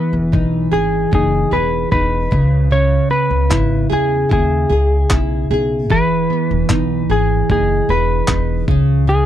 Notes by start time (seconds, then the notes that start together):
Already playing: E3 B3 E4 G#4 B4
0.13 E1
0.32 B1 D#4, kick
0.72 G#1 G#4
1.11 F#1 D#4 G#4, kick
1.51 E1 G#4 B4
1.91 E1 D#4 B4, kick
2.31 C#2 C#3, kick
2.71 C#3 C#5
3.10 B3 B4
3.30 C#2
3.50 G#1 E4, kick, clap
3.90 E2 G#4
4.29 D#2 E4 G#4, kick
4.70 C#2 G#4
5.10 B1 E4, kick, clap
5.51 B1 G#4
5.90 E1 E3 B4, kick
6.30 B3
6.51 E1
6.69 B1 D#4, kick, clap
7.09 G#1 G#4
7.50 F#1 D#4 G#4, kick
7.89 E1 G#4 B4
8.28 E1 D#4, kick, clap
8.68 C#2 C#3, kick
9.07 C#3 G#4